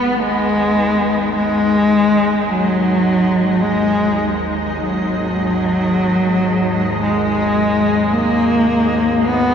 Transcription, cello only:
0, 0, Header, 1, 2, 480
1, 0, Start_track
1, 0, Tempo, 500000
1, 9162, End_track
2, 0, Start_track
2, 0, Title_t, "Cello"
2, 0, Program_c, 0, 42
2, 0, Note_on_c, 0, 59, 100
2, 197, Note_on_c, 0, 56, 106
2, 211, Note_off_c, 0, 59, 0
2, 1287, Note_off_c, 0, 56, 0
2, 1300, Note_on_c, 0, 56, 103
2, 2397, Note_on_c, 0, 54, 93
2, 2411, Note_off_c, 0, 56, 0
2, 3475, Note_on_c, 0, 56, 93
2, 3490, Note_off_c, 0, 54, 0
2, 4285, Note_off_c, 0, 56, 0
2, 4568, Note_on_c, 0, 54, 100
2, 6695, Note_off_c, 0, 54, 0
2, 6735, Note_on_c, 0, 56, 91
2, 7802, Note_on_c, 0, 58, 100
2, 7816, Note_off_c, 0, 56, 0
2, 8892, Note_on_c, 0, 59, 108
2, 8906, Note_off_c, 0, 58, 0
2, 9162, Note_off_c, 0, 59, 0
2, 9162, End_track
0, 0, End_of_file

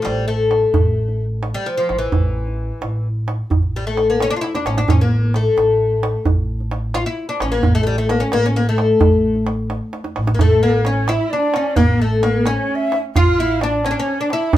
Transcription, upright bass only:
0, 0, Header, 1, 2, 480
1, 0, Start_track
1, 0, Tempo, 459770
1, 775, Time_signature, 6, 3, 24, 8
1, 15217, End_track
2, 0, Start_track
2, 0, Title_t, "Upright bass"
2, 0, Program_c, 0, 32
2, 58, Note_on_c, 0, 33, 80
2, 658, Note_off_c, 0, 33, 0
2, 776, Note_on_c, 0, 33, 77
2, 1577, Note_off_c, 0, 33, 0
2, 1977, Note_on_c, 0, 33, 74
2, 2176, Note_off_c, 0, 33, 0
2, 2215, Note_on_c, 0, 33, 86
2, 2815, Note_off_c, 0, 33, 0
2, 2938, Note_on_c, 0, 33, 82
2, 3537, Note_off_c, 0, 33, 0
2, 3656, Note_on_c, 0, 33, 79
2, 4456, Note_off_c, 0, 33, 0
2, 4855, Note_on_c, 0, 33, 75
2, 5054, Note_off_c, 0, 33, 0
2, 5092, Note_on_c, 0, 33, 94
2, 5693, Note_off_c, 0, 33, 0
2, 5813, Note_on_c, 0, 33, 81
2, 6413, Note_off_c, 0, 33, 0
2, 6537, Note_on_c, 0, 33, 84
2, 7336, Note_off_c, 0, 33, 0
2, 7730, Note_on_c, 0, 33, 91
2, 7930, Note_off_c, 0, 33, 0
2, 7976, Note_on_c, 0, 33, 95
2, 8575, Note_off_c, 0, 33, 0
2, 8692, Note_on_c, 0, 33, 89
2, 9293, Note_off_c, 0, 33, 0
2, 9407, Note_on_c, 0, 33, 80
2, 10211, Note_off_c, 0, 33, 0
2, 10615, Note_on_c, 0, 33, 82
2, 10814, Note_off_c, 0, 33, 0
2, 10850, Note_on_c, 0, 33, 84
2, 11653, Note_off_c, 0, 33, 0
2, 12290, Note_on_c, 0, 33, 79
2, 13094, Note_off_c, 0, 33, 0
2, 13740, Note_on_c, 0, 33, 79
2, 14541, Note_off_c, 0, 33, 0
2, 15179, Note_on_c, 0, 33, 85
2, 15217, Note_off_c, 0, 33, 0
2, 15217, End_track
0, 0, End_of_file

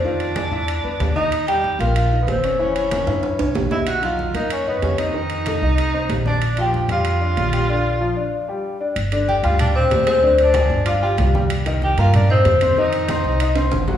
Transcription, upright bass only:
0, 0, Header, 1, 2, 480
1, 0, Start_track
1, 0, Tempo, 317965
1, 78, Time_signature, 4, 2, 24, 8
1, 21095, End_track
2, 0, Start_track
2, 0, Title_t, "Upright bass"
2, 0, Program_c, 0, 32
2, 0, Note_on_c, 0, 41, 84
2, 710, Note_off_c, 0, 41, 0
2, 778, Note_on_c, 0, 40, 86
2, 1234, Note_off_c, 0, 40, 0
2, 1269, Note_on_c, 0, 40, 72
2, 1496, Note_off_c, 0, 40, 0
2, 1505, Note_on_c, 0, 39, 81
2, 2628, Note_off_c, 0, 39, 0
2, 2703, Note_on_c, 0, 34, 90
2, 3381, Note_off_c, 0, 34, 0
2, 3429, Note_on_c, 0, 30, 77
2, 4551, Note_off_c, 0, 30, 0
2, 4631, Note_on_c, 0, 42, 84
2, 5082, Note_off_c, 0, 42, 0
2, 5117, Note_on_c, 0, 36, 67
2, 5342, Note_off_c, 0, 36, 0
2, 5355, Note_on_c, 0, 35, 79
2, 6476, Note_off_c, 0, 35, 0
2, 6555, Note_on_c, 0, 42, 84
2, 7230, Note_off_c, 0, 42, 0
2, 7282, Note_on_c, 0, 41, 81
2, 8401, Note_off_c, 0, 41, 0
2, 8475, Note_on_c, 0, 36, 77
2, 9151, Note_off_c, 0, 36, 0
2, 9193, Note_on_c, 0, 34, 80
2, 10317, Note_off_c, 0, 34, 0
2, 10394, Note_on_c, 0, 41, 93
2, 11071, Note_off_c, 0, 41, 0
2, 11125, Note_on_c, 0, 34, 74
2, 12244, Note_off_c, 0, 34, 0
2, 13525, Note_on_c, 0, 31, 91
2, 14196, Note_off_c, 0, 31, 0
2, 14240, Note_on_c, 0, 38, 87
2, 14913, Note_off_c, 0, 38, 0
2, 14953, Note_on_c, 0, 38, 87
2, 16075, Note_off_c, 0, 38, 0
2, 16150, Note_on_c, 0, 31, 96
2, 16826, Note_off_c, 0, 31, 0
2, 16870, Note_on_c, 0, 36, 94
2, 17992, Note_off_c, 0, 36, 0
2, 18074, Note_on_c, 0, 43, 86
2, 18747, Note_off_c, 0, 43, 0
2, 18792, Note_on_c, 0, 41, 86
2, 19910, Note_off_c, 0, 41, 0
2, 19988, Note_on_c, 0, 36, 82
2, 20662, Note_off_c, 0, 36, 0
2, 20706, Note_on_c, 0, 31, 84
2, 21095, Note_off_c, 0, 31, 0
2, 21095, End_track
0, 0, End_of_file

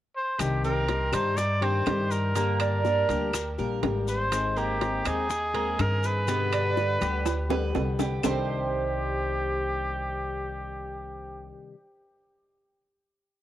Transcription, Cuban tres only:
0, 0, Header, 1, 2, 480
1, 0, Start_track
1, 0, Key_signature, -3, "minor"
1, 0, Tempo, 489396
1, 388, Time_signature, 4, 2, 24, 8
1, 13165, End_track
2, 0, Start_track
2, 0, Title_t, "Cuban tres"
2, 0, Program_c, 0, 25
2, 632, Note_on_c, 0, 60, 86
2, 1096, Note_off_c, 0, 60, 0
2, 1111, Note_on_c, 0, 63, 58
2, 1576, Note_off_c, 0, 63, 0
2, 1590, Note_on_c, 0, 60, 86
2, 1823, Note_off_c, 0, 60, 0
2, 1835, Note_on_c, 0, 67, 69
2, 2299, Note_off_c, 0, 67, 0
2, 2314, Note_on_c, 0, 58, 75
2, 2546, Note_off_c, 0, 58, 0
2, 2556, Note_on_c, 0, 62, 71
2, 3021, Note_off_c, 0, 62, 0
2, 3036, Note_on_c, 0, 67, 62
2, 3502, Note_off_c, 0, 67, 0
2, 3517, Note_on_c, 0, 70, 69
2, 3983, Note_off_c, 0, 70, 0
2, 4478, Note_on_c, 0, 58, 76
2, 4945, Note_off_c, 0, 58, 0
2, 4963, Note_on_c, 0, 63, 61
2, 5428, Note_off_c, 0, 63, 0
2, 5442, Note_on_c, 0, 58, 80
2, 5675, Note_off_c, 0, 58, 0
2, 5683, Note_on_c, 0, 68, 64
2, 6149, Note_off_c, 0, 68, 0
2, 6165, Note_on_c, 0, 59, 74
2, 6397, Note_off_c, 0, 59, 0
2, 6405, Note_on_c, 0, 62, 77
2, 6871, Note_off_c, 0, 62, 0
2, 6886, Note_on_c, 0, 67, 66
2, 7351, Note_off_c, 0, 67, 0
2, 7362, Note_on_c, 0, 71, 78
2, 7829, Note_off_c, 0, 71, 0
2, 7841, Note_on_c, 0, 67, 64
2, 8070, Note_off_c, 0, 67, 0
2, 8078, Note_on_c, 0, 60, 81
2, 8082, Note_on_c, 0, 67, 76
2, 8087, Note_on_c, 0, 72, 97
2, 11265, Note_off_c, 0, 60, 0
2, 11269, Note_off_c, 0, 67, 0
2, 11274, Note_off_c, 0, 72, 0
2, 13165, End_track
0, 0, End_of_file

